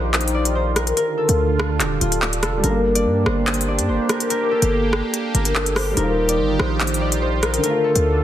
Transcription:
Already playing: A#1 D#3 D#4 F4 G4 A#4 C5 D5
0.14 clap, closed hi-hat
0.21 closed hi-hat
0.28 closed hi-hat
0.35 D5
0.45 closed hi-hat
0.55 C5
0.76 A#4, cross-stick, closed hi-hat
0.87 closed hi-hat
0.97 D3 D4 F4 A4 A#4, closed hi-hat
1.18 A4
1.29 D2, closed hi-hat
1.60 cross-stick
1.80 D#1 G4, clap, closed hi-hat
2.01 D1 F4, closed hi-hat
2.12 closed hi-hat
2.22 clap
2.33 closed hi-hat
2.42 F1 A4, cross-stick, closed hi-hat
2.54 D1 G3
2.63 G1 A#3 D4 G4 A#4, closed hi-hat
2.69 A#3
2.95 D5, closed hi-hat
3.05 G2
3.26 G1 C5, cross-stick
3.47 clap, closed hi-hat
3.54 closed hi-hat
3.61 closed hi-hat
3.68 D5
3.79 G2, closed hi-hat
3.89 G1 C5
4.09 A#4, cross-stick, closed hi-hat
4.20 closed hi-hat
4.30 A#4, closed hi-hat
4.51 A4
4.62 G1, closed hi-hat
4.93 cross-stick
5.14 closed hi-hat
5.34 G1 A#4, closed hi-hat
5.45 closed hi-hat
5.55 A4, clap
5.66 closed hi-hat
5.76 C5, cross-stick, open hi-hat
5.91 G3
5.97 D#1 D#3 D#4 F4 G4 A#4, closed hi-hat
6.03 F4
6.29 D5, closed hi-hat
6.39 G1
6.59 A#1 C5, cross-stick
6.80 clap, closed hi-hat
6.87 closed hi-hat
6.94 closed hi-hat
7.01 D5
7.12 closed hi-hat
7.22 C5
7.42 A#4, cross-stick, closed hi-hat
7.54 closed hi-hat
7.58 D3
7.63 D3 A3 D4 A4 A#4, closed hi-hat
7.70 F4
7.84 A4
7.96 D2, closed hi-hat

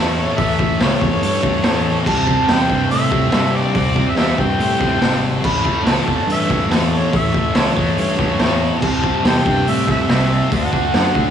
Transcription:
Already playing: E2 A2 E3 A3 E4 A4 C#5
0.20 C#5
0.37 A1 A2 E3 A3 E5, kick, open hi-hat
0.59 E3 A3, kick
0.79 C#2 A2 E3 A3 C#5, snare, open hi-hat
1.01 E2 E3 A3, kick
1.23 G2 C#5, open hi-hat
1.43 E3 A3, kick
1.63 E2 A2 E3 A3 C#5, snare, open hi-hat
2.04 C2 C3 G3 C4 E4 G4 C5 A5, kick, crash
2.26 G3 C4, kick
2.47 E2 C3 G3 C4 G5, snare, open hi-hat
2.68 G2 G3 C4, kick
2.91 A2 E5, open hi-hat
3.09 G3 C4, kick
3.30 G2 C3 G3 C4, snare, open hi-hat
3.55 D5
3.74 C2 C3 G3 C4, kick, open hi-hat
3.95 G3 C4, kick
4.09 E5
4.16 E2 C3 G3 C4 E5, snare, open hi-hat
4.37 G2 G3 C4 G5, kick
4.59 A2, open hi-hat
4.80 G3 C4, kick, snare
5.00 G#1 C3 G3 C4, snare, open hi-hat
5.42 A1 A2 E3 A3 E4 A4 C#5 B5, kick, crash
5.63 E3 A3, kick
5.83 C#2 A2 E3 A3, snare, open hi-hat
5.89 A5
6.05 E2 E3 A3, kick
6.27 G2, open hi-hat
6.32 E5
6.48 E3 A3, kick, snare
6.68 E2 A2 E3 A3, snare, open hi-hat
6.95 C#5
7.10 A1 A2 E3 A3, kick, open hi-hat
7.16 E5
7.31 E3 A3, kick
7.53 C#2 A2 E3 A3 C#5, snare, open hi-hat
7.74 E2 E3 A3, kick
7.98 G2 C#5, open hi-hat
8.16 E3 A3, kick, snare
8.38 E2 A2 E3 A3, snare, open hi-hat
8.43 C#5
8.80 C2 C3 G3 C4 E4, kick, crash
8.84 G4 C5 A5
9.02 G3 C4, kick
9.23 E2 C3 G3 C4, snare, open hi-hat
9.28 G5
9.45 G2 G3 C4, kick
9.67 A2 E5, open hi-hat
9.87 G3 C4, kick, snare
9.91 E5
10.07 C2 C3 G3 C4, snare, open hi-hat
10.50 D2 D3 A3 D4 F#4 A4 D5, kick, open hi-hat
10.56 F#5
10.72 A3 D4, kick
10.94 F#2 D3 A3 D4, snare, open hi-hat
11.14 A2 A3 D4 E5, kick

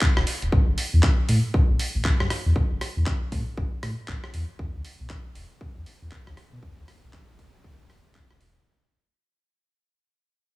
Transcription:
0.01 kick, clap, closed hi-hat
0.17 E1, cross-stick
0.27 open hi-hat
0.42 E1, closed hi-hat
0.52 A1, kick
0.68 G1
0.78 open hi-hat
0.93 E2
1.03 kick, clap
1.29 A2, open hi-hat
1.54 kick
1.70 A1
1.79 open hi-hat
1.95 A1
2.05 kick, clap
2.20 G2, cross-stick
2.30 cross-stick, open hi-hat
2.46 E2
2.56 A1, kick
2.71 G1
2.81 cross-stick, open hi-hat
2.97 E2
3.06 kick, clap
3.32 A2, kick, open hi-hat
3.57 G1, kick
3.83 A2, cross-stick, open hi-hat
4.08 A1, kick, clap
4.24 cross-stick
4.34 E2, open hi-hat
4.59 E2, kick
4.75 D2
4.85 open hi-hat
5.00 B1
5.10 kick, clap
5.35 E1, open hi-hat
5.61 kick
5.76 E2
5.86 open hi-hat
6.02 E2
6.12 kick, clap
6.27 D2, cross-stick
6.37 cross-stick, open hi-hat
6.53 B2
6.63 E2, kick
6.78 D2
6.88 cross-stick, open hi-hat
7.03 B1
7.13 kick, clap
7.39 E1, kick, open hi-hat
7.64 D2, kick
7.90 E1, cross-stick, open hi-hat
8.15 kick, clap
8.30 E1, cross-stick
8.41 open hi-hat

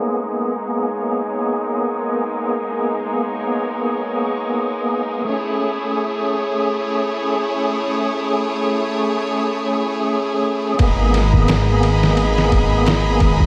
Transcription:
Already playing: G#3 A#3 B3 D#4 G#4 A#4 C#5
5.24 A3 E4 G#4 C#5
5.29 C#4
5.33 G#4
10.78 G#1 A#3 B3 G#4 D#5 A#5 B5, kick, ride
10.82 G#4
11.14 snare, ride
11.29 A#3
11.33 B3, kick
11.38 G#4
11.48 snare, ride
11.83 ride
12.03 snare
12.17 ride
12.38 snare
12.52 kick, ride
12.86 snare, ride
13.20 kick, ride
13.40 kick

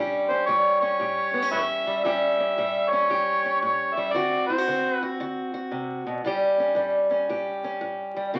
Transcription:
Already playing: A2 G3 C#4
0.00 G4
0.29 C#4 C5
0.46 A2 G3 C#5
0.80 C#4 C#5
1.00 A2 G4
1.33 B3
1.42 C#4
1.52 A2 B4 C#5 E5
1.87 G3
2.04 A2 G3 C#4 G4 E5
2.40 C#4
2.58 A2 G3
2.90 C#4 C#5
3.10 A2 G4
3.46 C#4
3.62 A2 C#5
3.95 G3 E5
4.13 D3 C4 F#4 D5
4.47 E4 C5
4.58 F#4
4.68 D3 C4
4.93 B4
5.03 F#4
5.20 D3 F#4
5.54 F#4
5.71 C3
6.07 B2
6.25 A2 G3 C#4 G4
6.59 C#4
6.75 A2 G3
7.11 C#4
7.29 A2 G4
7.64 C#4
7.81 A2
8.16 G3
8.34 D3 C4 F#4

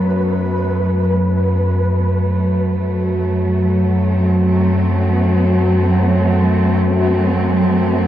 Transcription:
Already playing: F#2 F#3 A3 B3 B4
1.84 F#2 F#3
4.04 C4

